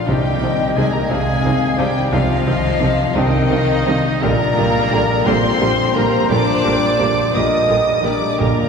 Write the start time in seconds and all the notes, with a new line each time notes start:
Already playing: D4 F4 D5
0.07 C2 C3 D#3 G3 C4 D4 D#4 G4 D#5 G5
0.42 C2 C3 D#3 C4 D4 D#4 C5
0.75 C2 C3 D#3 G#3 C4 D4 D#4 G#4 C5 G#5
0.92 A#3 A#4 A#5
1.09 C2 C3 D#3 G#3 C4 D4 D#4 G#4 F5 G#5
1.43 C2 C3 D#3 C4 D4 D#4 D5
1.77 C2 C3 D#3 G3 C4 D4 D#4 G4 D5 G5
2.12 C2 C3 D#3 F3 C4 D4 D#4 F4 D#5 F5
2.46 C2 C3 D#3 C4 D4 D#4 C5
2.80 C2 C3 D#3 C4 D4 D#4 C5
3.14 C2 C3 D#3 C4 D4 D#4 D#5 G5
3.50 C2 C3 D#3 C4 D4 D#4 C5 F5
3.85 C2 C3 D#3 C4 D4 D#4 C5 D#5
4.21 A#1 A#2 D3 G3 A#3 G4 A#4 D5 A#5
4.55 A#1 A#2 D3 G3 A#3 G4 A#4
4.90 A#1 A#2 D3 G3 A#3 G4 A#4
5.26 A#1 A#2 D3 G3 A#3 C4 G4 C5 C6
5.60 A#1 A#2 D3 G3 A#3 G4 A#4
5.95 A#1 A#2 D3 G3 A#3 G4 A#4 A#5
6.30 A#1 A#2 D3 G3 A#3 D4 G4 D5 D6
6.65 A#1 A#2 D3 G3 A#3 G4 A#4
7.00 A#1 A#2 D3 G3 A#3 G4 A#4
7.34 A#1 A#2 D3 G3 A#3 G4 A#4 D#5 D#6
7.68 A#1 A#2 D3 G3 A#3 G4 A#4
8.03 A#1 A#2 D3 G3 A#3 D4 G4 A#4 D5 D6
8.37 A#1 G2 A#2 D3 G3 A#3 G4 A#4 D5
8.41 A#5
8.47 G2
8.55 G2
8.62 G2